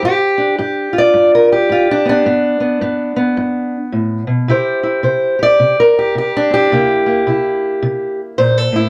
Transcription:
0, 0, Header, 1, 2, 480
1, 0, Start_track
1, 0, Tempo, 556586
1, 31, Time_signature, 4, 2, 24, 8
1, 7668, End_track
2, 0, Start_track
2, 0, Title_t, "Steel-string acoustic guitar"
2, 0, Program_c, 0, 25
2, 22, Note_on_c, 0, 43, 81
2, 42, Note_on_c, 0, 67, 101
2, 326, Note_on_c, 0, 62, 41
2, 470, Note_off_c, 0, 43, 0
2, 499, Note_off_c, 0, 67, 0
2, 504, Note_on_c, 0, 43, 74
2, 509, Note_on_c, 0, 67, 50
2, 801, Note_on_c, 0, 65, 49
2, 844, Note_off_c, 0, 67, 0
2, 848, Note_on_c, 0, 74, 105
2, 950, Note_off_c, 0, 43, 0
2, 981, Note_on_c, 0, 43, 66
2, 1159, Note_off_c, 0, 74, 0
2, 1163, Note_on_c, 0, 70, 73
2, 1310, Note_off_c, 0, 70, 0
2, 1314, Note_on_c, 0, 67, 68
2, 1429, Note_off_c, 0, 43, 0
2, 1461, Note_on_c, 0, 43, 66
2, 1469, Note_off_c, 0, 65, 0
2, 1482, Note_on_c, 0, 65, 68
2, 1637, Note_off_c, 0, 65, 0
2, 1638, Note_off_c, 0, 62, 0
2, 1649, Note_on_c, 0, 62, 83
2, 1771, Note_on_c, 0, 59, 44
2, 1794, Note_off_c, 0, 62, 0
2, 1804, Note_on_c, 0, 62, 94
2, 1909, Note_off_c, 0, 43, 0
2, 1932, Note_off_c, 0, 59, 0
2, 1945, Note_on_c, 0, 43, 69
2, 1950, Note_on_c, 0, 59, 51
2, 1952, Note_off_c, 0, 67, 0
2, 2234, Note_off_c, 0, 59, 0
2, 2244, Note_on_c, 0, 59, 44
2, 2391, Note_off_c, 0, 43, 0
2, 2421, Note_off_c, 0, 59, 0
2, 2425, Note_on_c, 0, 43, 73
2, 2431, Note_on_c, 0, 59, 46
2, 2718, Note_off_c, 0, 59, 0
2, 2728, Note_on_c, 0, 59, 50
2, 2871, Note_off_c, 0, 43, 0
2, 2907, Note_on_c, 0, 43, 65
2, 3237, Note_off_c, 0, 62, 0
2, 3351, Note_off_c, 0, 43, 0
2, 3384, Note_on_c, 0, 45, 53
2, 3680, Note_off_c, 0, 45, 0
2, 3683, Note_on_c, 0, 47, 47
2, 3850, Note_off_c, 0, 59, 0
2, 3866, Note_on_c, 0, 48, 74
2, 3870, Note_off_c, 0, 47, 0
2, 3876, Note_on_c, 0, 64, 49
2, 3882, Note_on_c, 0, 67, 49
2, 3889, Note_on_c, 0, 72, 51
2, 4165, Note_off_c, 0, 64, 0
2, 4168, Note_on_c, 0, 64, 39
2, 4311, Note_off_c, 0, 48, 0
2, 4338, Note_on_c, 0, 48, 67
2, 4343, Note_off_c, 0, 72, 0
2, 4346, Note_on_c, 0, 72, 51
2, 4644, Note_off_c, 0, 67, 0
2, 4648, Note_on_c, 0, 67, 45
2, 4677, Note_off_c, 0, 72, 0
2, 4680, Note_on_c, 0, 74, 104
2, 4787, Note_off_c, 0, 48, 0
2, 4826, Note_on_c, 0, 48, 73
2, 4997, Note_off_c, 0, 67, 0
2, 5000, Note_on_c, 0, 70, 83
2, 5155, Note_off_c, 0, 74, 0
2, 5162, Note_on_c, 0, 67, 77
2, 5271, Note_off_c, 0, 48, 0
2, 5305, Note_on_c, 0, 48, 59
2, 5316, Note_off_c, 0, 67, 0
2, 5331, Note_on_c, 0, 67, 71
2, 5475, Note_off_c, 0, 70, 0
2, 5489, Note_on_c, 0, 62, 95
2, 5609, Note_on_c, 0, 60, 37
2, 5627, Note_off_c, 0, 67, 0
2, 5637, Note_on_c, 0, 67, 96
2, 5750, Note_off_c, 0, 48, 0
2, 5769, Note_off_c, 0, 64, 0
2, 5770, Note_off_c, 0, 60, 0
2, 5796, Note_on_c, 0, 48, 74
2, 5799, Note_off_c, 0, 62, 0
2, 5800, Note_on_c, 0, 58, 49
2, 5809, Note_on_c, 0, 64, 47
2, 6081, Note_off_c, 0, 58, 0
2, 6091, Note_on_c, 0, 58, 38
2, 6236, Note_off_c, 0, 48, 0
2, 6262, Note_off_c, 0, 64, 0
2, 6268, Note_on_c, 0, 48, 66
2, 6274, Note_on_c, 0, 64, 44
2, 6711, Note_off_c, 0, 48, 0
2, 6748, Note_on_c, 0, 48, 75
2, 7072, Note_off_c, 0, 67, 0
2, 7191, Note_off_c, 0, 48, 0
2, 7227, Note_on_c, 0, 72, 87
2, 7232, Note_on_c, 0, 46, 57
2, 7396, Note_off_c, 0, 72, 0
2, 7396, Note_on_c, 0, 69, 90
2, 7519, Note_off_c, 0, 46, 0
2, 7522, Note_on_c, 0, 45, 54
2, 7542, Note_off_c, 0, 64, 0
2, 7553, Note_on_c, 0, 64, 76
2, 7668, Note_off_c, 0, 45, 0
2, 7668, Note_off_c, 0, 58, 0
2, 7668, Note_off_c, 0, 64, 0
2, 7668, Note_off_c, 0, 69, 0
2, 7668, End_track
0, 0, End_of_file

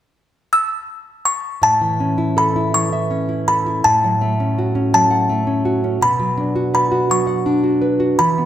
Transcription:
0, 0, Header, 1, 3, 480
1, 0, Start_track
1, 0, Key_signature, 3, "major"
1, 0, Tempo, 737101
1, 1054, Time_signature, 6, 3, 24, 8
1, 2503, Tempo, 725514
1, 5553, End_track
2, 0, Start_track
2, 0, Title_t, "Music box"
2, 0, Program_c, 0, 10
2, 344, Note_on_c, 0, 88, 91
2, 788, Note_off_c, 0, 88, 0
2, 817, Note_on_c, 0, 85, 80
2, 1062, Note_on_c, 0, 81, 80
2, 1065, Note_off_c, 0, 85, 0
2, 1549, Note_on_c, 0, 83, 76
2, 1561, Note_off_c, 0, 81, 0
2, 1656, Note_off_c, 0, 83, 0
2, 1786, Note_on_c, 0, 85, 77
2, 2239, Note_off_c, 0, 85, 0
2, 2265, Note_on_c, 0, 83, 76
2, 2503, Note_on_c, 0, 81, 80
2, 2511, Note_off_c, 0, 83, 0
2, 3221, Note_off_c, 0, 81, 0
2, 3229, Note_on_c, 0, 81, 78
2, 3946, Note_on_c, 0, 83, 86
2, 3961, Note_off_c, 0, 81, 0
2, 4416, Note_off_c, 0, 83, 0
2, 4424, Note_on_c, 0, 83, 68
2, 4664, Note_off_c, 0, 83, 0
2, 4664, Note_on_c, 0, 85, 76
2, 5377, Note_on_c, 0, 83, 75
2, 5405, Note_off_c, 0, 85, 0
2, 5553, Note_off_c, 0, 83, 0
2, 5553, End_track
3, 0, Start_track
3, 0, Title_t, "Nylon-string guitar"
3, 0, Program_c, 1, 24
3, 1053, Note_on_c, 1, 45, 54
3, 1180, Note_on_c, 1, 52, 41
3, 1302, Note_on_c, 1, 61, 47
3, 1419, Note_on_c, 1, 64, 48
3, 1542, Note_on_c, 1, 69, 48
3, 1659, Note_off_c, 1, 64, 0
3, 1666, Note_on_c, 1, 64, 45
3, 1781, Note_off_c, 1, 52, 0
3, 1789, Note_on_c, 1, 52, 55
3, 1903, Note_off_c, 1, 64, 0
3, 1906, Note_on_c, 1, 76, 41
3, 2014, Note_off_c, 1, 61, 0
3, 2022, Note_on_c, 1, 61, 44
3, 2141, Note_on_c, 1, 64, 44
3, 2259, Note_off_c, 1, 69, 0
3, 2267, Note_on_c, 1, 69, 51
3, 2378, Note_off_c, 1, 64, 0
3, 2386, Note_on_c, 1, 64, 46
3, 2476, Note_off_c, 1, 45, 0
3, 2483, Note_off_c, 1, 52, 0
3, 2486, Note_off_c, 1, 76, 0
3, 2487, Note_off_c, 1, 61, 0
3, 2497, Note_off_c, 1, 69, 0
3, 2501, Note_off_c, 1, 64, 0
3, 2505, Note_on_c, 1, 45, 56
3, 2631, Note_on_c, 1, 54, 44
3, 2749, Note_on_c, 1, 57, 49
3, 2871, Note_on_c, 1, 61, 48
3, 2993, Note_on_c, 1, 66, 50
3, 3096, Note_off_c, 1, 61, 0
3, 3103, Note_on_c, 1, 61, 48
3, 3218, Note_off_c, 1, 54, 0
3, 3226, Note_on_c, 1, 54, 57
3, 3339, Note_on_c, 1, 78, 45
3, 3454, Note_off_c, 1, 57, 0
3, 3462, Note_on_c, 1, 57, 49
3, 3571, Note_off_c, 1, 61, 0
3, 3579, Note_on_c, 1, 61, 45
3, 3692, Note_off_c, 1, 66, 0
3, 3700, Note_on_c, 1, 66, 52
3, 3816, Note_off_c, 1, 61, 0
3, 3824, Note_on_c, 1, 61, 49
3, 3911, Note_off_c, 1, 45, 0
3, 3917, Note_off_c, 1, 54, 0
3, 3917, Note_off_c, 1, 78, 0
3, 3923, Note_off_c, 1, 57, 0
3, 3930, Note_off_c, 1, 66, 0
3, 3936, Note_off_c, 1, 61, 0
3, 3938, Note_on_c, 1, 47, 57
3, 4058, Note_on_c, 1, 54, 46
3, 4177, Note_on_c, 1, 62, 49
3, 4297, Note_on_c, 1, 66, 47
3, 4418, Note_on_c, 1, 71, 51
3, 4527, Note_off_c, 1, 66, 0
3, 4535, Note_on_c, 1, 66, 47
3, 4647, Note_off_c, 1, 54, 0
3, 4655, Note_on_c, 1, 54, 53
3, 4767, Note_off_c, 1, 71, 0
3, 4770, Note_on_c, 1, 78, 43
3, 4887, Note_off_c, 1, 62, 0
3, 4895, Note_on_c, 1, 62, 45
3, 5004, Note_off_c, 1, 66, 0
3, 5012, Note_on_c, 1, 66, 44
3, 5130, Note_on_c, 1, 71, 46
3, 5243, Note_off_c, 1, 66, 0
3, 5251, Note_on_c, 1, 66, 45
3, 5351, Note_off_c, 1, 47, 0
3, 5357, Note_off_c, 1, 54, 0
3, 5358, Note_off_c, 1, 78, 0
3, 5364, Note_off_c, 1, 62, 0
3, 5368, Note_off_c, 1, 71, 0
3, 5372, Note_off_c, 1, 66, 0
3, 5379, Note_on_c, 1, 52, 53
3, 5503, Note_on_c, 1, 59, 42
3, 5553, Note_off_c, 1, 52, 0
3, 5553, Note_off_c, 1, 59, 0
3, 5553, End_track
0, 0, End_of_file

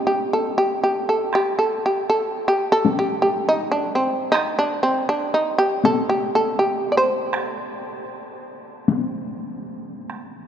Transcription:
0, 0, Header, 1, 3, 480
1, 0, Start_track
1, 0, Tempo, 764331
1, 841, Time_signature, 4, 2, 24, 8
1, 1315, Tempo, 750939
1, 4675, Tempo, 786370
1, 6582, End_track
2, 0, Start_track
2, 0, Title_t, "Shamisen"
2, 0, Program_c, 0, 106
2, 43, Note_on_c, 0, 67, 70
2, 190, Note_off_c, 0, 67, 0
2, 210, Note_on_c, 0, 69, 74
2, 355, Note_off_c, 0, 69, 0
2, 363, Note_on_c, 0, 67, 78
2, 512, Note_off_c, 0, 67, 0
2, 525, Note_on_c, 0, 67, 74
2, 672, Note_off_c, 0, 67, 0
2, 684, Note_on_c, 0, 69, 67
2, 831, Note_off_c, 0, 69, 0
2, 848, Note_on_c, 0, 67, 89
2, 992, Note_off_c, 0, 67, 0
2, 996, Note_on_c, 0, 69, 74
2, 1145, Note_off_c, 0, 69, 0
2, 1166, Note_on_c, 0, 67, 75
2, 1309, Note_off_c, 0, 67, 0
2, 1316, Note_on_c, 0, 69, 92
2, 1539, Note_off_c, 0, 69, 0
2, 1562, Note_on_c, 0, 67, 82
2, 1709, Note_off_c, 0, 67, 0
2, 1716, Note_on_c, 0, 69, 86
2, 1866, Note_off_c, 0, 69, 0
2, 1886, Note_on_c, 0, 67, 75
2, 2028, Note_off_c, 0, 67, 0
2, 2035, Note_on_c, 0, 67, 78
2, 2185, Note_off_c, 0, 67, 0
2, 2205, Note_on_c, 0, 63, 77
2, 2349, Note_off_c, 0, 63, 0
2, 2351, Note_on_c, 0, 62, 75
2, 2500, Note_off_c, 0, 62, 0
2, 2503, Note_on_c, 0, 60, 77
2, 2728, Note_off_c, 0, 60, 0
2, 2737, Note_on_c, 0, 63, 105
2, 2890, Note_off_c, 0, 63, 0
2, 2908, Note_on_c, 0, 62, 80
2, 3056, Note_off_c, 0, 62, 0
2, 3064, Note_on_c, 0, 60, 78
2, 3213, Note_off_c, 0, 60, 0
2, 3230, Note_on_c, 0, 62, 87
2, 3377, Note_off_c, 0, 62, 0
2, 3390, Note_on_c, 0, 63, 74
2, 3538, Note_off_c, 0, 63, 0
2, 3546, Note_on_c, 0, 67, 92
2, 3697, Note_off_c, 0, 67, 0
2, 3716, Note_on_c, 0, 69, 99
2, 3862, Note_off_c, 0, 69, 0
2, 3872, Note_on_c, 0, 67, 76
2, 4021, Note_off_c, 0, 67, 0
2, 4037, Note_on_c, 0, 69, 86
2, 4184, Note_off_c, 0, 69, 0
2, 4189, Note_on_c, 0, 67, 75
2, 4374, Note_off_c, 0, 67, 0
2, 4399, Note_on_c, 0, 74, 60
2, 4432, Note_off_c, 0, 74, 0
2, 4434, Note_on_c, 0, 72, 78
2, 6083, Note_off_c, 0, 72, 0
2, 6582, End_track
3, 0, Start_track
3, 0, Title_t, "Taiko and cinematic ensemble drums"
3, 833, Note_on_c, 9, 37, 48
3, 896, Note_off_c, 9, 37, 0
3, 1796, Note_on_c, 9, 48, 56
3, 1860, Note_off_c, 9, 48, 0
3, 2753, Note_on_c, 9, 37, 52
3, 2817, Note_off_c, 9, 37, 0
3, 3707, Note_on_c, 9, 48, 56
3, 3771, Note_off_c, 9, 48, 0
3, 4662, Note_on_c, 9, 37, 51
3, 4724, Note_off_c, 9, 37, 0
3, 5610, Note_on_c, 9, 48, 58
3, 5671, Note_off_c, 9, 48, 0
3, 6351, Note_on_c, 9, 37, 31
3, 6412, Note_off_c, 9, 37, 0
3, 6582, End_track
0, 0, End_of_file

